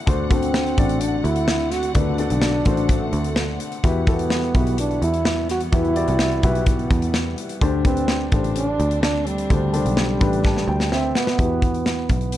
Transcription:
Already playing: F#5
0.06 D2 D3 A3 C4 D4 F#4 A4 C5, kick, closed hi-hat
0.30 C4 D4 F#4 A4 C5, kick, closed hi-hat
0.43 closed hi-hat
0.54 snare
0.66 closed hi-hat
0.77 A1 D4 F#4 A4 D5, kick, closed hi-hat
0.89 closed hi-hat
1.01 D4, closed hi-hat
1.24 D2 E4, closed hi-hat
1.36 closed hi-hat
1.48 snare
1.59 closed hi-hat
1.71 F#4, snare, closed hi-hat
1.83 closed hi-hat
1.94 D2 D3 D4 F#4 A4 B4, kick, closed hi-hat
2.18 D4 F#4 A4 D5, closed hi-hat
2.30 B1, closed hi-hat
2.42 snare
2.65 A1 D4 F#4 A4 C5, kick, closed hi-hat
2.77 closed hi-hat
2.89 A3, kick, closed hi-hat
3.13 D2, closed hi-hat
3.24 closed hi-hat
3.36 snare
3.60 closed hi-hat
3.72 closed hi-hat
3.83 E2 E3 G3 B3 E4 F#4 G4 B4, kick, closed hi-hat
4.07 B3 E4 F#4 G4 A4, kick, closed hi-hat
4.19 closed hi-hat
4.30 snare
4.43 closed hi-hat
4.54 B1 E4 F#4 G4 B4, kick, closed hi-hat
4.67 closed hi-hat
4.78 D4, closed hi-hat
4.91 closed hi-hat
5.02 E2 E4, closed hi-hat
5.14 closed hi-hat
5.25 snare
5.49 F#4, snare, closed hi-hat
5.60 closed hi-hat
5.72 E2 E3 E4 F#4 G4 B4, kick, closed hi-hat
5.85 closed hi-hat
5.95 E4 F#4 G4 D5, closed hi-hat
6.08 C2, closed hi-hat
6.19 snare
6.31 closed hi-hat
6.43 B1 E4 F#4 G4 B4, kick, closed hi-hat
6.55 closed hi-hat
6.66 B3, kick, closed hi-hat
6.79 closed hi-hat
6.91 E2, kick, closed hi-hat
7.02 closed hi-hat
7.14 snare
7.38 closed hi-hat
7.49 closed hi-hat
7.61 D2 D3 A3 C4 D4 G4 A4 C5, kick, closed hi-hat
7.85 C4 D4 G4 A4 B4, kick, closed hi-hat
7.97 closed hi-hat
8.08 snare
8.32 A1 D4 G4 A4 C5, kick, closed hi-hat
8.44 closed hi-hat
8.56 D4, closed hi-hat
8.79 D2, closed hi-hat
8.91 closed hi-hat
9.03 D4, snare
9.27 G3, closed hi-hat
9.38 closed hi-hat
9.50 D2 D3 D4 G4 A4 C5, kick, closed hi-hat
9.73 D4 G4 A4 C5, closed hi-hat
9.85 B1, closed hi-hat
9.97 snare
10.20 A1 D4 G4 A4 B4 B5, kick, closed hi-hat
10.33 closed hi-hat
10.45 A5, kick, snare
10.57 snare
10.68 D2 G5
10.80 snare
10.92 C4 E5, snare
11.15 B3 F#5, snare
11.27 snare
11.39 E2 E3 E4 F#4 G4 B4, kick, closed hi-hat
11.62 kick, closed hi-hat
11.74 closed hi-hat
11.86 snare
12.09 B1 B3, kick, closed hi-hat
12.21 closed hi-hat
12.32 closed hi-hat

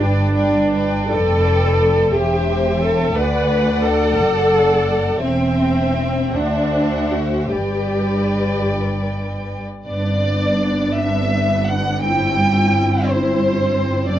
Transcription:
0.00 G1 G2 D4 B4 D5 G5
0.34 B4 D5 G5
0.72 B4 D5 G5
1.09 F1 F2 A4 G5
1.13 B4 D5
2.13 E1 E2 G4 C5 E5 G5
2.81 A4
3.15 D2 B4 D5 F#5
3.82 A4
4.17 F#1 F#2
5.22 E1 E2 C4 C5 E5 G5
6.34 D2 D4 C5 E5 F#5
7.12 F#4
7.50 G1 G2 G4 B4 D5 G5
9.86 G1 G2 B3 D4 D5
10.96 E5
11.67 F#5
12.02 C4 E4 G5
13.07 C5
14.08 F#1 F#2 D4 D5

